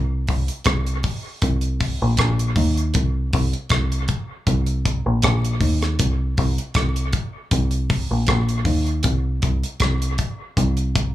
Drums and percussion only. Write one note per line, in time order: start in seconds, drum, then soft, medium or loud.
0.27 kick medium
0.27 open hi-hat soft
0.48 closed hi-hat medium
0.64 kick loud
0.64 cross-stick medium
0.64 closed hi-hat medium
0.86 closed hi-hat soft
1.03 kick medium
1.03 open hi-hat medium
1.42 kick medium
1.42 closed hi-hat medium
1.61 closed hi-hat medium
1.80 kick medium
1.80 open hi-hat medium
2.17 kick loud
2.17 cross-stick loud
2.17 closed hi-hat medium
2.39 closed hi-hat medium
2.56 kick medium
2.56 open hi-hat medium
2.77 closed hi-hat soft
2.94 kick loud
2.94 closed hi-hat medium
3.33 kick medium
3.33 open hi-hat medium
3.53 closed hi-hat medium
3.69 kick medium
3.69 cross-stick loud
3.69 closed hi-hat medium
3.92 closed hi-hat medium
4.08 kick medium
4.08 closed hi-hat medium
4.47 kick loud
4.47 closed hi-hat medium
4.66 closed hi-hat soft
4.85 kick medium
4.85 closed hi-hat medium
5.22 kick loud
5.22 cross-stick loud
5.22 closed hi-hat medium
5.45 closed hi-hat medium
5.61 kick medium
5.61 open hi-hat medium
5.82 cross-stick medium
5.82 closed hi-hat soft
5.99 kick loud
5.99 closed hi-hat medium
6.37 kick loud
6.37 open hi-hat medium
6.58 closed hi-hat medium
6.74 kick loud
6.74 cross-stick medium
6.74 closed hi-hat medium
6.96 closed hi-hat medium
7.13 kick medium
7.13 closed hi-hat medium
7.51 kick medium
7.51 closed hi-hat medium
7.71 closed hi-hat soft
7.90 kick loud
7.90 open hi-hat medium
8.27 kick loud
8.27 cross-stick loud
8.27 closed hi-hat medium
8.49 closed hi-hat medium
8.65 kick medium
8.65 open hi-hat medium
8.87 closed hi-hat soft
9.03 kick loud
9.03 closed hi-hat medium
9.42 kick medium
9.42 closed hi-hat medium
9.63 closed hi-hat medium
9.80 kick loud
9.80 cross-stick medium
9.80 closed hi-hat medium
10.02 closed hi-hat medium
10.18 kick medium
10.18 closed hi-hat medium
10.57 kick medium
10.57 closed hi-hat medium
10.77 closed hi-hat medium
10.95 kick loud
10.95 closed hi-hat medium